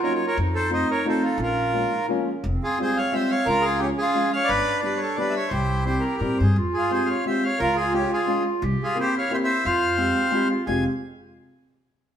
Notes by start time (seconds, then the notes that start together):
Already playing: F4
0.03 F#3 A#3 C#4 D#4 A#4 C#5
0.15 C#5
0.27 A#4 C#5
0.37 F2 D#4
0.55 A4 C5
0.70 F3 A3 C4 D#4 C5
0.74 D#5
0.91 A#4 C#5
1.05 F3 A3 C4 D#4 A4 C5
1.22 F4 A4
1.38 A#1 C#4 F4
1.43 A#4
1.73 F3 G#3 A#3 C#4 F4
1.93 D#4
2.08 F3 G#3 A#3 C#4
2.44 F1 C4
2.63 F4 G#4
2.78 G3 G#3 C4 F4
2.82 G#4 C5
2.97 C#5 F5
3.12 G3 G#3 C4 F4 C5 E5
3.30 C#5 F5
3.46 C#2 C#4 F4 A#4
3.61 F4 G#4
3.79 F3 G#3 C#4 G4
3.83 F4
3.98 F4 G#4
4.13 F3 G#3 C#4 F4
4.32 C#5 F5
4.44 D5
4.48 G1 D4 B4
4.80 G3 B3 D4 D5
4.84 G4 B4
4.97 C#5
5.02 A4
5.16 G3 B3 D4 G4 B4 D5
5.30 E5
5.37 C#5
5.48 C2 E4 C5
5.53 G4
5.85 G3 C4 E4 G4 C5
6.00 A#4
6.05 G4
6.17 A#2 G3 A#4
6.21 C4 E4 G4
6.38 G2 C5
6.42 G#4
6.56 F2 F4
6.74 F4 G#4
6.90 G#3 C4 F4 G4 G#4 C5
7.06 F5
7.10 C#5
7.25 G#3 C4 F4 G4 E5
7.29 C5
7.43 C#5 F5
7.59 C#2 F4 A#4
7.76 F4 G#4
7.93 G#3 C#4 F4 G4 G#4
8.13 F4 G#4
8.26 G#3 C#4 F4 G#4
8.62 C2 G4
8.83 F4 G#4
8.95 A#3 C4 E4 G4
8.99 E4 G4 C5
9.18 C#5 F5
9.30 A#3 C4 E4 G4 C5 E5
9.44 C5 E5
9.65 F2 F4 C5 F5
9.97 G#3 C4 F4 G4
10.31 G#3 C4 E4 F4 G4
10.49 F4
10.66 F1 G#3 C4 F4 G4 G#4 G#5